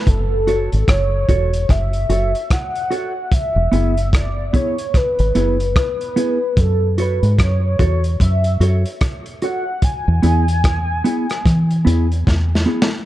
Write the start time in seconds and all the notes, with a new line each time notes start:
Already playing: B4
0.07 F#1 A4, kick, closed hi-hat
0.47 F#4 A4 C#5, closed hi-hat
0.72 G#1, closed hi-hat
0.88 F#1 C#5, kick, cross-stick, closed hi-hat
1.29 E1 F#4 A4 C#5, kick, closed hi-hat
1.53 closed hi-hat
1.69 F#1 E5, kick, cross-stick, closed hi-hat
1.93 closed hi-hat
2.09 F#1 F#4 A4 C#5, closed hi-hat
2.35 closed hi-hat
2.51 F#5, kick, cross-stick, closed hi-hat
2.75 closed hi-hat
2.91 F#4 A4 C#5, closed hi-hat
3.32 E5, kick, closed hi-hat
3.56 E1
3.72 F#1 B3 E4 G#4, closed hi-hat
3.97 closed hi-hat
4.13 D5, kick, cross-stick, closed hi-hat
4.53 B3 E4 G#4 C#5, kick, closed hi-hat
4.78 closed hi-hat
4.94 B4, kick, cross-stick, closed hi-hat
5.19 G#1, closed hi-hat
5.35 F#1 B3 E4 G#4, closed hi-hat
5.60 closed hi-hat
5.76 B4, kick, cross-stick, closed hi-hat
6.01 closed hi-hat
6.16 B3 E4 G#4, closed hi-hat
6.57 F#2 A4, kick, closed hi-hat
6.98 F#4 A4 B4 C#5, closed hi-hat
7.23 G#2, closed hi-hat
7.38 F#2 C#5, kick, cross-stick, closed hi-hat
7.79 E2 F#4 A4 C#5, kick, closed hi-hat
8.04 closed hi-hat
8.20 F#2 E5, kick, closed hi-hat
8.44 closed hi-hat
8.60 F#2 F#4 A4 C#5, closed hi-hat
8.86 closed hi-hat
9.01 kick, cross-stick, closed hi-hat
9.26 closed hi-hat
9.42 F#4 A4 C#5 F#5, closed hi-hat
9.82 G#5, kick, closed hi-hat
10.08 E2
10.22 E2 B3 E4 G#4, closed hi-hat
10.48 closed hi-hat
10.64 kick, cross-stick, closed hi-hat
11.04 B3 E4 G#4, closed hi-hat
11.30 cross-stick, closed hi-hat
11.46 E3, kick, cross-stick, closed hi-hat
11.71 closed hi-hat
11.85 E2 B3 E4 G#4, closed hi-hat
12.12 closed hi-hat
12.27 E2, kick, snare
12.55 snare
12.66 B3 E4 G#4
12.82 snare